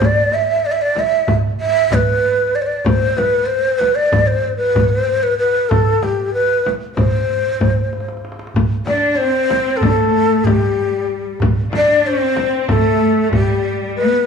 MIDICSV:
0, 0, Header, 1, 5, 480
1, 0, Start_track
1, 0, Tempo, 633580
1, 11, Time_signature, 9, 3, 24, 8
1, 10806, End_track
2, 0, Start_track
2, 0, Title_t, "Ney"
2, 0, Program_c, 0, 77
2, 39, Note_on_c, 0, 74, 93
2, 258, Note_on_c, 0, 76, 86
2, 270, Note_off_c, 0, 74, 0
2, 498, Note_on_c, 0, 74, 87
2, 509, Note_off_c, 0, 76, 0
2, 543, Note_on_c, 0, 76, 77
2, 555, Note_off_c, 0, 74, 0
2, 618, Note_on_c, 0, 74, 95
2, 629, Note_off_c, 0, 76, 0
2, 753, Note_on_c, 0, 76, 91
2, 765, Note_off_c, 0, 74, 0
2, 1017, Note_off_c, 0, 76, 0
2, 1216, Note_on_c, 0, 76, 93
2, 1465, Note_on_c, 0, 71, 93
2, 1476, Note_off_c, 0, 76, 0
2, 1936, Note_on_c, 0, 74, 87
2, 1947, Note_off_c, 0, 71, 0
2, 1986, Note_on_c, 0, 72, 72
2, 1998, Note_off_c, 0, 74, 0
2, 2019, Note_on_c, 0, 74, 89
2, 2031, Note_off_c, 0, 72, 0
2, 2162, Note_on_c, 0, 72, 91
2, 2173, Note_off_c, 0, 74, 0
2, 2409, Note_on_c, 0, 71, 85
2, 2421, Note_off_c, 0, 72, 0
2, 2622, Note_on_c, 0, 72, 85
2, 2633, Note_off_c, 0, 71, 0
2, 2870, Note_on_c, 0, 71, 81
2, 2881, Note_off_c, 0, 72, 0
2, 2993, Note_on_c, 0, 74, 85
2, 3004, Note_off_c, 0, 71, 0
2, 3234, Note_on_c, 0, 72, 88
2, 3246, Note_off_c, 0, 74, 0
2, 3459, Note_off_c, 0, 72, 0
2, 3464, Note_on_c, 0, 71, 81
2, 3703, Note_on_c, 0, 72, 83
2, 3714, Note_off_c, 0, 71, 0
2, 3961, Note_on_c, 0, 71, 86
2, 3973, Note_off_c, 0, 72, 0
2, 4073, Note_off_c, 0, 71, 0
2, 4078, Note_on_c, 0, 71, 80
2, 4313, Note_on_c, 0, 69, 83
2, 4324, Note_off_c, 0, 71, 0
2, 4570, Note_on_c, 0, 67, 72
2, 4582, Note_off_c, 0, 69, 0
2, 4797, Note_off_c, 0, 67, 0
2, 4801, Note_on_c, 0, 71, 87
2, 5061, Note_off_c, 0, 71, 0
2, 5271, Note_on_c, 0, 72, 80
2, 6210, Note_off_c, 0, 72, 0
2, 6716, Note_on_c, 0, 74, 90
2, 6943, Note_on_c, 0, 72, 101
2, 6954, Note_off_c, 0, 74, 0
2, 7400, Note_on_c, 0, 69, 95
2, 7412, Note_off_c, 0, 72, 0
2, 7914, Note_on_c, 0, 67, 76
2, 7925, Note_off_c, 0, 69, 0
2, 8641, Note_off_c, 0, 67, 0
2, 8913, Note_on_c, 0, 74, 99
2, 9144, Note_on_c, 0, 72, 103
2, 9155, Note_off_c, 0, 74, 0
2, 9615, Note_off_c, 0, 72, 0
2, 9622, Note_on_c, 0, 69, 96
2, 10064, Note_off_c, 0, 69, 0
2, 10108, Note_on_c, 0, 67, 92
2, 10546, Note_off_c, 0, 67, 0
2, 10577, Note_on_c, 0, 71, 87
2, 10806, Note_off_c, 0, 71, 0
2, 10806, End_track
3, 0, Start_track
3, 0, Title_t, "Cello section"
3, 0, Program_c, 1, 48
3, 6735, Note_on_c, 1, 62, 76
3, 6955, Note_off_c, 1, 62, 0
3, 6970, Note_on_c, 1, 60, 77
3, 7447, Note_on_c, 1, 57, 73
3, 7450, Note_off_c, 1, 60, 0
3, 7928, Note_off_c, 1, 57, 0
3, 7944, Note_on_c, 1, 55, 64
3, 8656, Note_off_c, 1, 55, 0
3, 8886, Note_on_c, 1, 62, 80
3, 9110, Note_off_c, 1, 62, 0
3, 9122, Note_on_c, 1, 60, 82
3, 9604, Note_off_c, 1, 60, 0
3, 9611, Note_on_c, 1, 57, 79
3, 10082, Note_on_c, 1, 55, 78
3, 10089, Note_off_c, 1, 57, 0
3, 10563, Note_off_c, 1, 55, 0
3, 10579, Note_on_c, 1, 59, 74
3, 10759, Note_off_c, 1, 59, 0
3, 10767, Note_on_c, 1, 59, 61
3, 10806, Note_off_c, 1, 59, 0
3, 10806, End_track
4, 0, Start_track
4, 0, Title_t, "Darbuka"
4, 2, Note_on_c, 9, 64, 78
4, 77, Note_off_c, 9, 64, 0
4, 242, Note_on_c, 9, 63, 60
4, 318, Note_off_c, 9, 63, 0
4, 483, Note_on_c, 9, 62, 22
4, 559, Note_off_c, 9, 62, 0
4, 723, Note_on_c, 9, 63, 65
4, 799, Note_off_c, 9, 63, 0
4, 966, Note_on_c, 9, 64, 80
4, 1042, Note_off_c, 9, 64, 0
4, 1442, Note_on_c, 9, 64, 79
4, 1518, Note_off_c, 9, 64, 0
4, 2158, Note_on_c, 9, 64, 84
4, 2234, Note_off_c, 9, 64, 0
4, 2400, Note_on_c, 9, 63, 66
4, 2476, Note_off_c, 9, 63, 0
4, 2636, Note_on_c, 9, 62, 25
4, 2712, Note_off_c, 9, 62, 0
4, 2882, Note_on_c, 9, 63, 73
4, 2958, Note_off_c, 9, 63, 0
4, 3121, Note_on_c, 9, 64, 85
4, 3196, Note_off_c, 9, 64, 0
4, 3599, Note_on_c, 9, 64, 80
4, 3674, Note_off_c, 9, 64, 0
4, 3844, Note_on_c, 9, 62, 25
4, 3920, Note_off_c, 9, 62, 0
4, 4327, Note_on_c, 9, 64, 93
4, 4403, Note_off_c, 9, 64, 0
4, 4565, Note_on_c, 9, 63, 57
4, 4640, Note_off_c, 9, 63, 0
4, 4805, Note_on_c, 9, 62, 23
4, 4880, Note_off_c, 9, 62, 0
4, 5049, Note_on_c, 9, 63, 61
4, 5125, Note_off_c, 9, 63, 0
4, 5282, Note_on_c, 9, 64, 87
4, 5358, Note_off_c, 9, 64, 0
4, 5526, Note_on_c, 9, 62, 27
4, 5602, Note_off_c, 9, 62, 0
4, 5762, Note_on_c, 9, 64, 82
4, 5837, Note_off_c, 9, 64, 0
4, 6007, Note_on_c, 9, 63, 53
4, 6064, Note_on_c, 9, 62, 58
4, 6083, Note_off_c, 9, 63, 0
4, 6125, Note_on_c, 9, 63, 60
4, 6140, Note_off_c, 9, 62, 0
4, 6190, Note_on_c, 9, 62, 60
4, 6201, Note_off_c, 9, 63, 0
4, 6248, Note_on_c, 9, 63, 66
4, 6266, Note_off_c, 9, 62, 0
4, 6303, Note_on_c, 9, 62, 81
4, 6324, Note_off_c, 9, 63, 0
4, 6359, Note_on_c, 9, 63, 74
4, 6379, Note_off_c, 9, 62, 0
4, 6418, Note_on_c, 9, 62, 73
4, 6435, Note_off_c, 9, 63, 0
4, 6473, Note_on_c, 9, 64, 72
4, 6494, Note_off_c, 9, 62, 0
4, 6549, Note_off_c, 9, 64, 0
4, 6711, Note_on_c, 9, 63, 56
4, 6787, Note_off_c, 9, 63, 0
4, 6955, Note_on_c, 9, 62, 24
4, 7030, Note_off_c, 9, 62, 0
4, 7194, Note_on_c, 9, 63, 58
4, 7269, Note_off_c, 9, 63, 0
4, 7431, Note_on_c, 9, 64, 76
4, 7507, Note_off_c, 9, 64, 0
4, 7909, Note_on_c, 9, 64, 83
4, 7984, Note_off_c, 9, 64, 0
4, 8635, Note_on_c, 9, 64, 88
4, 8711, Note_off_c, 9, 64, 0
4, 8879, Note_on_c, 9, 63, 60
4, 8955, Note_off_c, 9, 63, 0
4, 9129, Note_on_c, 9, 62, 27
4, 9205, Note_off_c, 9, 62, 0
4, 9365, Note_on_c, 9, 63, 71
4, 9441, Note_off_c, 9, 63, 0
4, 9610, Note_on_c, 9, 64, 87
4, 9686, Note_off_c, 9, 64, 0
4, 10090, Note_on_c, 9, 64, 81
4, 10165, Note_off_c, 9, 64, 0
4, 10335, Note_on_c, 9, 62, 27
4, 10410, Note_off_c, 9, 62, 0
4, 10806, End_track
5, 0, Start_track
5, 0, Title_t, "Frame drum"
5, 11, Note_on_c, 9, 64, 78
5, 86, Note_off_c, 9, 64, 0
5, 730, Note_on_c, 9, 64, 57
5, 806, Note_off_c, 9, 64, 0
5, 969, Note_on_c, 9, 64, 81
5, 1045, Note_off_c, 9, 64, 0
5, 1451, Note_on_c, 9, 64, 81
5, 1527, Note_off_c, 9, 64, 0
5, 2167, Note_on_c, 9, 64, 94
5, 2243, Note_off_c, 9, 64, 0
5, 2411, Note_on_c, 9, 64, 65
5, 2487, Note_off_c, 9, 64, 0
5, 2888, Note_on_c, 9, 64, 54
5, 2964, Note_off_c, 9, 64, 0
5, 3124, Note_on_c, 9, 64, 89
5, 3199, Note_off_c, 9, 64, 0
5, 3604, Note_on_c, 9, 64, 82
5, 3680, Note_off_c, 9, 64, 0
5, 4325, Note_on_c, 9, 64, 80
5, 4401, Note_off_c, 9, 64, 0
5, 4566, Note_on_c, 9, 64, 60
5, 4642, Note_off_c, 9, 64, 0
5, 5051, Note_on_c, 9, 64, 57
5, 5127, Note_off_c, 9, 64, 0
5, 5283, Note_on_c, 9, 64, 78
5, 5359, Note_off_c, 9, 64, 0
5, 5765, Note_on_c, 9, 64, 78
5, 5841, Note_off_c, 9, 64, 0
5, 6486, Note_on_c, 9, 64, 89
5, 6562, Note_off_c, 9, 64, 0
5, 6721, Note_on_c, 9, 64, 64
5, 6797, Note_off_c, 9, 64, 0
5, 7202, Note_on_c, 9, 64, 65
5, 7277, Note_off_c, 9, 64, 0
5, 7445, Note_on_c, 9, 64, 83
5, 7521, Note_off_c, 9, 64, 0
5, 7932, Note_on_c, 9, 64, 79
5, 8008, Note_off_c, 9, 64, 0
5, 8651, Note_on_c, 9, 64, 83
5, 8727, Note_off_c, 9, 64, 0
5, 8886, Note_on_c, 9, 64, 71
5, 8962, Note_off_c, 9, 64, 0
5, 9370, Note_on_c, 9, 64, 62
5, 9446, Note_off_c, 9, 64, 0
5, 9613, Note_on_c, 9, 64, 86
5, 9689, Note_off_c, 9, 64, 0
5, 10096, Note_on_c, 9, 64, 72
5, 10172, Note_off_c, 9, 64, 0
5, 10806, End_track
0, 0, End_of_file